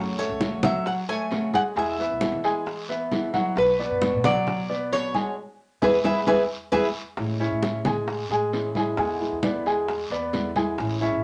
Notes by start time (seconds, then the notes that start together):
Already playing: F#2 C#3 F#3 A3 C#4 F#4 F#5
0.18 A3 C#4 F#4 A4 C#5, high bongo, high conga
0.29 C#2
0.41 C#3 F#3 A3 C#4 F#4, high bongo, high conga, short guiro
0.52 F#3
0.63 F#3 A3 C#4 F#4 E5 F#5, high bongo, high conga, low conga, short guiro
0.85 F#5, muted nylon-string guitar stroke, high bongo, high conga, long guiro
1.09 A3 A4 C#5 G#5, high bongo, high conga
1.31 C#3 F#3 A3 C#4 F#4, high bongo, low bongo, high conga, short guiro
1.53 G#3 A3 C#4 F#4 G#4 F#5 G#5, high conga, short guiro
1.75 E2 B2 E3 G#3 B3 E4 G#4 E5 G#5, high bongo, high conga, long guiro
1.98 G#3 B3 E4 B4 E5, high bongo, high conga
2.10 B1
2.20 B2 E3 G#3 B3 E4, high bongo, high conga, short guiro
2.32 E3
2.43 G#3 B3 E4 G#4 G#5, high bongo, high conga, short guiro
2.66 muted nylon-string guitar stroke, high bongo, high conga, long guiro
2.89 B3 B4 E5, high bongo, high conga
3.11 B2 E3 G#3 B3 E4, high bongo, low bongo, high conga, short guiro
3.33 F#3 G#3 B3 E4 F#4 F#5, high conga, short guiro
3.55 B1 B2 F#3 B3 D4 F#4 B4, high bongo, high conga, long guiro
3.79 B3 D4 F#4 B4 D5, high bongo, high conga
3.90 F#2
4.02 B2 F#3 B3 D4 F#4, high bongo, high conga, short guiro
4.13 B2
4.24 F#3 B3 D4 F#4 D5 F#5, high bongo, high conga, low conga, short guiro
4.47 muted nylon-string guitar stroke, high bongo, high conga, low conga, long guiro
4.69 B3 B4 D5, high bongo, high conga
4.92 B2 F#3 B3 D4 F#4 C#5, high bongo, low bongo, high conga, short guiro
5.14 G#3 B3 D4 F#4 G#4 G#5, high conga, short guiro
5.82 E2 G#3 B3 E4 G#4 B4 E5, low bongo, high conga, long guiro
6.04 E2 G#3 B3 E4 G#4 B4 E5, low bongo, high conga, long guiro
6.26 E2 G#3 B3 E4 G#4 B4 E5, low bongo, high conga, long guiro
6.72 E2 G#3 B3 E4 G#4 B4 E5, low bongo, high conga, long guiro
7.17 A2 E3 G#3 C#4 E4, high bongo, high conga, long guiro
7.40 G#3 C#4 E4 C#5 E5, high bongo, high conga
7.51 A2
7.63 G#3 C#4 E4, high bongo, high conga, short guiro
7.85 G#3 G#4 G#5, high bongo, high conga, low conga, short guiro
8.07 muted nylon-string guitar stroke, high bongo, high conga, long guiro
8.29 A2 G#3 G#4 G#5, high bongo, high conga
8.52 E3 G#3 C#4 E4, high bongo, low bongo, high conga, short guiro
8.75 G#3 C#4 E4 G#4 G#5, high conga, short guiro
8.97 E2 B2 D3 G#3 B3 E4 G#4 G#5, high bongo, high conga, long guiro
9.20 D3 G#3 B3 E4, high bongo, high conga
9.31 E2
9.42 D3 G#3 B3 E4 B4 D5, high bongo, high conga, short guiro
9.66 G#3 G#4 G#5, high bongo, high conga, short guiro
9.88 muted nylon-string guitar stroke, high bongo, high conga, long guiro
10.10 E2 B3 B4 D5, high bongo, high conga
10.33 D3 G#3 B3 E4, high bongo, low bongo, high conga, short guiro
10.55 D3 G#3 B3 E4 G#4 G#5, high conga, short guiro
10.78 A1 E3 G#3 C#4 E4, high bongo, high conga, long guiro
11.00 G#3 C#4 E4 C#5 E5, high bongo, high conga
11.12 A1